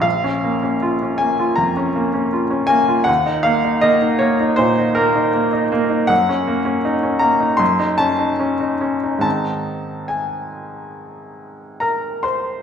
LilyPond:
\new Staff \with { instrumentName = "Upright piano" } { \time 4/4 \key bes \minor \tempo 4 = 78 << { f''4. aes''8 bes''4. aes''8 | ges''8 f''8 ees''8 des''8 c''8 bes'4 r8 | \key aes \mixolydian ges''4. bes''8 c'''8 a''4. | a''4 aes''2 <bes' bes''>8 <c'' c'''>8 | } \\ { bes,,16 des'16 bes16 des'16 f'16 des'16 bes16 f'16 f,16 des'16 bes16 des'16 f'16 des'16 bes16 f'16 | ees,16 ees'16 bes16 ees'16 bes16 ees'16 bes16 ees'16 bes,16 ees'16 bes16 ees'16 bes16 ees'16 bes16 ees'16 | ges,16 des'16 bes16 des'16 ees'16 des'16 bes16 ees'16 ges,16 ees'16 des'16 ees'16 des'16 ees'16 des'16 ees'16 | <aes, ees c' ees'>1 | } >> }